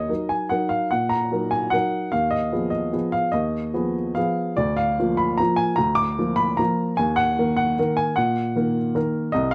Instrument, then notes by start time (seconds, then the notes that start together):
upright piano
Already playing: D#2 C#5 D#5
0.09 F#3 D#4 A#4
0.29 G#5
0.49 F#3 D#4 A#4 F#5
0.69 F5
0.91 A#2 F#5
1.09 A#5
1.31 F#3 D#4 A#4
1.51 G#5
1.70 F#3 D#4 A#4 F#5
2.12 D#2 F5
2.31 D#5
2.52 F3 B3 G#4
2.70 D#5
2.93 F3 B3 G#4
3.12 F5
3.32 D#2 D#5
3.74 F3 B3 G#4
4.15 F3 B3 G#4 F5
4.57 D2 D5
4.77 F5
4.99 F3 A#3 F4
5.17 B5
5.38 F3 A#3 F4 A#5
5.56 G#5
5.76 D2 A#5
5.95 D6
6.19 F3 A#3 F4
6.36 B5
6.57 F3 A#3 F4 A#5
6.97 D#2 G#5
7.16 F#5
7.39 D#3 A#3 A#4
7.56 F#5
7.79 D#3 A#3 A#4
7.97 G#5
8.16 A#2 F#5
8.56 D#3 A#3 A#4
8.95 D#3 A#3 A#4
9.32 C2 D#5
9.51 F5